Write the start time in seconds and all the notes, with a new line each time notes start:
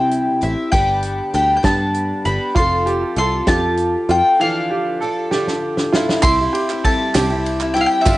Already playing: C3 G3 C4 E4 G4 G5
0.11 closed hi-hat
0.41 A1 C4 E4 G4 E5, closed hi-hat
0.72 G1 G2 D3 G3 B3 D4 G4 G5, kick, closed hi-hat
1.02 closed hi-hat
1.34 D2 G3 B3 D4 G4 G5, closed hi-hat
1.57 G5
1.63 G2 D3 G3 B3 D4 G4 A5, kick, snare, closed hi-hat
1.94 closed hi-hat
2.25 G1 G3 B3 D4 G4 B5, closed hi-hat
2.55 F1 F3 C4 F4 A4 C6, kick, closed hi-hat
2.86 G4, closed hi-hat
3.16 C2 F3 C4 F4 A4 C6, closed hi-hat
3.47 F2 F3 C4 F4 G4 A4 A5, kick, snare, closed hi-hat
3.77 closed hi-hat
4.09 F2 C4 F4 A4 G5, closed hi-hat
4.40 D3 E3 F3 D4 A4 F5
4.70 G4
5.01 F3 D4 A4
5.31 D3 F3 D4 G4 A4, snare
5.48 snare
5.77 snare
5.93 D4 E4 F4 A4, snare
6.09 snare
6.22 C2 C3 G3 C4 E4 C6, kick, clap, ride, tambourine
6.26 E4 G4
6.41 C4 E4 G4
6.53 G4, ride
6.70 C4 E4 G4, clap
6.84 G3 C4 E4 G4 A4 A5, kick, ride
7.14 C2 C3 G3 C4 E4 G4, snare, clap, ride, tambourine
7.30 C4 E4 G4, tambourine
7.45 ride, tambourine
7.60 C4 E4 G4, clap
7.74 G3 C4 E4 G5, ride
7.78 G4 F5
7.86 G5
7.91 tambourine
8.01 G2 E5
8.06 G1 D3 G3 B3 D4 F4 G4, kick, clap, ride, tambourine